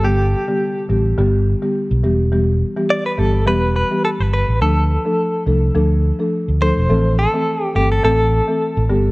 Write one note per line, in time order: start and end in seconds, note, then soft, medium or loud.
0.00 0.33 G1 loud
0.00 0.44 D3 medium
0.00 0.44 G3 medium
0.04 0.44 B3 medium
0.04 0.45 G4 loud
0.04 0.86 G4 medium
0.48 0.67 D3 medium
0.48 0.67 G3 medium
0.48 0.67 B3 medium
0.48 0.68 G4 medium
0.89 1.12 A1 medium
0.89 1.10 D3 medium
0.89 1.11 G3 medium
0.89 1.11 B3 medium
0.89 1.11 G4 medium
1.18 1.53 G1 loud
1.18 1.59 D3 loud
1.18 1.59 G3 medium
1.18 1.59 B3 medium
1.18 1.59 G4 loud
1.62 1.81 D3 medium
1.62 1.82 G3 medium
1.62 1.82 B3 medium
1.62 1.82 G4 medium
1.91 2.01 B1 loud
2.04 2.62 E1 loud
2.04 2.25 E3 medium
2.04 2.25 G3 medium
2.04 2.25 B3 medium
2.04 2.25 G4 medium
2.32 2.73 E3 medium
2.32 2.73 G3 medium
2.32 2.73 B3 medium
2.32 2.73 G4 medium
2.77 2.96 E3 medium
2.77 2.96 G3 medium
2.77 2.96 B3 medium
2.77 2.96 G4 medium
2.90 3.06 D5 loud
3.06 3.19 B4 loud
3.18 3.47 G1 loud
3.18 3.39 E3 medium
3.18 3.39 G3 medium
3.18 3.39 B3 medium
3.18 3.39 G4 medium
3.18 3.47 A4 medium
3.47 3.82 E1 loud
3.47 3.87 E3 loud
3.47 3.87 G3 medium
3.47 3.87 B3 medium
3.47 3.87 G4 loud
3.47 3.75 B4 medium
3.76 4.04 B4 medium
3.91 4.10 E3 medium
3.91 4.10 G3 medium
3.91 4.10 B3 medium
3.91 4.10 G4 medium
4.05 4.10 A4 medium
4.20 4.42 G1 medium
4.20 4.32 B4 medium
4.33 4.61 B4 medium
4.48 4.58 A1 medium
4.61 4.96 D2 loud
4.61 5.01 F3 medium
4.61 5.02 A3 medium
4.61 5.02 D4 medium
4.61 5.02 A4 medium
4.61 5.43 A4 medium
5.05 5.24 F3 medium
5.05 5.25 A3 medium
5.05 5.25 D4 medium
5.05 5.25 A4 medium
5.47 5.69 C2 loud
5.47 5.68 F3 medium
5.47 5.68 A3 medium
5.47 5.68 D4 medium
5.47 5.68 A4 medium
5.75 6.10 D2 loud
5.75 6.16 F3 loud
5.75 6.16 A3 medium
5.75 6.16 D4 medium
5.75 6.16 A4 loud
6.19 6.39 F3 medium
6.19 6.39 A3 medium
6.19 6.39 D4 medium
6.19 6.39 A4 medium
6.48 6.71 D2 medium
6.61 6.82 F3 medium
6.61 6.82 A3 medium
6.61 6.82 D4 medium
6.61 6.82 A4 medium
6.61 7.18 C5 loud
6.77 6.87 E1 medium
6.89 7.25 A1 loud
6.89 7.30 E3 medium
6.89 7.30 A3 medium
6.89 7.30 C4 medium
6.89 7.30 A4 loud
7.19 7.65 A4 loud
7.34 7.53 E3 medium
7.34 7.53 A3 medium
7.34 7.53 C4 medium
7.34 7.53 A4 medium
7.65 7.75 G4 loud
7.75 7.98 G1 medium
7.75 7.96 E3 medium
7.75 7.96 A3 medium
7.75 7.96 C4 medium
7.75 7.91 G4 medium
7.75 7.96 A4 medium
7.92 8.03 A4 medium
8.04 8.39 A1 loud
8.04 8.44 E3 loud
8.04 8.44 A3 medium
8.04 8.44 C4 medium
8.04 8.45 A4 loud
8.04 9.12 A4 loud
8.48 8.67 E3 medium
8.48 8.67 A3 medium
8.48 8.67 C4 medium
8.48 8.68 A4 medium
8.77 8.87 A1 loud
8.89 9.12 G1 medium
8.89 9.12 D3 loud
8.89 9.12 G3 medium
8.89 9.12 B3 medium
8.89 9.12 G4 loud